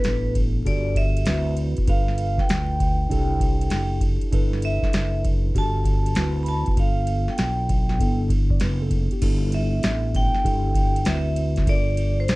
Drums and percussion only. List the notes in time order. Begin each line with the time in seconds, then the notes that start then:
0.04 snare, hi-hat pedal, ride
0.35 kick, ride
0.66 kick, ride
0.95 kick, ride
1.17 ride
1.26 snare, hi-hat pedal, ride
1.57 ride
1.77 kick, ride
1.88 kick, ride
2.08 snare
2.18 ride
2.38 kick, snare
2.49 snare, hi-hat pedal, ride
2.80 kick, ride
3.10 kick, ride
3.40 kick, ride
3.61 ride
3.70 snare, hi-hat pedal, ride
4.01 kick, ride
4.21 ride
4.32 kick, ride
4.53 snare
4.62 ride
4.83 kick, snare
4.93 snare, hi-hat pedal, ride
5.25 kick, ride
5.55 kick, ride
5.85 kick, ride
6.06 ride
6.15 snare, hi-hat pedal, ride
6.46 ride
6.66 kick, ride
6.77 kick, ride
7.07 ride
7.28 snare
7.38 snare, hi-hat pedal, ride
7.69 kick, ride
7.89 snare
8.00 kick, ride
8.30 kick, ride
8.50 kick
8.60 snare, hi-hat pedal, ride
8.91 kick, ride
9.11 ride
9.22 kick, crash, ride
9.52 ride
9.83 snare, hi-hat pedal, ride
10.15 kick, ride
10.35 snare
10.45 kick, ride
10.75 kick, ride
10.96 ride
11.05 snare, hi-hat pedal, ride
11.36 ride
11.56 kick, snare, ride
11.67 kick, ride
11.97 ride
12.28 snare, hi-hat pedal, ride